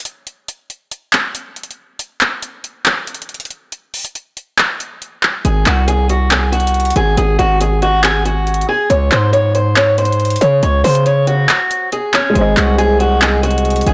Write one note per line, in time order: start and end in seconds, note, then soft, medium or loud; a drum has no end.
0.05 closed hi-hat medium
0.27 closed hi-hat medium
0.48 closed hi-hat medium
0.70 closed hi-hat medium
0.91 closed hi-hat medium
1.13 clap loud
1.13 closed hi-hat medium
1.35 closed hi-hat medium
1.56 closed hi-hat soft
1.63 closed hi-hat medium
1.71 closed hi-hat medium
1.99 closed hi-hat medium
2.21 clap medium
2.21 closed hi-hat medium
2.42 closed hi-hat medium
2.64 closed hi-hat medium
2.86 clap loud
2.86 closed hi-hat medium
3.07 closed hi-hat medium
3.15 closed hi-hat medium
3.22 closed hi-hat medium
3.29 closed hi-hat soft
3.34 closed hi-hat medium
3.40 closed hi-hat medium
3.45 closed hi-hat medium
3.50 closed hi-hat medium
3.72 closed hi-hat medium
3.94 closed hi-hat medium
3.94 open hi-hat medium
4.05 closed hi-hat medium
4.15 closed hi-hat medium
4.37 closed hi-hat medium
4.58 clap loud
4.58 closed hi-hat medium
4.80 closed hi-hat medium
5.02 closed hi-hat medium
5.23 clap medium
5.45 5.66 G#1 loud
5.45 5.64 G#4 medium
5.45 closed hi-hat medium
5.66 6.92 C2 loud
5.66 5.86 F#4 medium
5.66 clap medium
5.66 closed hi-hat medium
5.88 6.07 G#4 medium
5.88 closed hi-hat medium
6.09 6.29 F#4 medium
6.09 closed hi-hat medium
6.31 6.50 G#4 medium
6.31 clap loud
6.31 closed hi-hat medium
6.52 6.93 F#4 medium
6.52 closed hi-hat medium
6.60 closed hi-hat medium
6.67 closed hi-hat medium
6.74 closed hi-hat soft
6.80 closed hi-hat soft
6.85 closed hi-hat medium
6.90 closed hi-hat medium
6.96 7.17 G#1 loud
6.96 7.16 G#4 medium
6.96 closed hi-hat medium
7.17 7.38 G#1 loud
7.17 7.37 G#4 medium
7.17 closed hi-hat medium
7.39 8.65 G#1 loud
7.39 7.58 F#4 medium
7.39 closed hi-hat medium
7.61 7.80 G#4 medium
7.61 closed hi-hat medium
7.82 8.02 F#4 medium
7.82 closed hi-hat medium
8.04 8.23 G#4 medium
8.04 clap loud
8.04 closed hi-hat medium
8.25 8.66 F#4 medium
8.25 closed hi-hat medium
8.47 closed hi-hat soft
8.54 closed hi-hat medium
8.61 closed hi-hat medium
8.69 8.88 G#4 medium
8.90 9.11 C#2 loud
8.90 9.09 C#5 medium
8.90 closed hi-hat medium
9.11 10.37 G#2 loud
9.11 9.31 C5 medium
9.11 clap medium
9.11 closed hi-hat medium
9.33 9.52 C#5 medium
9.33 closed hi-hat medium
9.55 9.74 C5 medium
9.55 closed hi-hat medium
9.76 9.96 C#5 medium
9.76 clap loud
9.76 closed hi-hat medium
9.98 10.39 C5 medium
9.98 closed hi-hat medium
10.05 closed hi-hat medium
10.12 closed hi-hat medium
10.20 closed hi-hat soft
10.25 closed hi-hat soft
10.30 closed hi-hat medium
10.36 closed hi-hat medium
10.41 10.62 C#3 loud
10.41 10.61 C#5 medium
10.41 closed hi-hat medium
10.63 10.84 C#2 loud
10.63 10.82 C#5 medium
10.63 closed hi-hat medium
10.84 11.46 C#3 loud
10.84 11.03 C5 medium
10.84 closed hi-hat medium
10.84 open hi-hat medium
10.95 closed hi-hat medium
11.06 11.25 C#5 medium
11.06 closed hi-hat medium
11.27 11.88 F#4 medium
11.27 closed hi-hat medium
11.49 clap loud
11.49 closed hi-hat medium
11.71 closed hi-hat medium
11.92 12.12 G#4 medium
11.92 closed hi-hat medium
12.14 12.33 C#4 medium
12.14 clap medium
12.30 13.94 G#3 medium
12.30 13.94 G#4 medium
12.35 12.56 G#1 loud
12.35 13.94 C3 medium
12.35 13.94 G#3 medium
12.35 12.55 G#4 medium
12.35 13.94 C5 medium
12.35 13.94 D#5 medium
12.35 closed hi-hat medium
12.41 13.94 D#5 medium
12.57 13.83 C2 loud
12.57 12.76 F#4 medium
12.57 clap medium
12.57 closed hi-hat medium
12.78 12.98 G#4 medium
12.78 closed hi-hat medium
13.00 13.20 F#4 medium
13.00 closed hi-hat medium
13.22 13.41 G#4 medium
13.22 clap loud
13.22 closed hi-hat medium
13.43 13.84 F#4 medium
13.43 closed hi-hat medium
13.51 closed hi-hat medium
13.58 closed hi-hat medium
13.65 closed hi-hat soft
13.70 closed hi-hat medium
13.76 closed hi-hat medium
13.81 closed hi-hat medium
13.87 13.94 G#1 loud
13.87 13.94 G#4 medium
13.87 closed hi-hat medium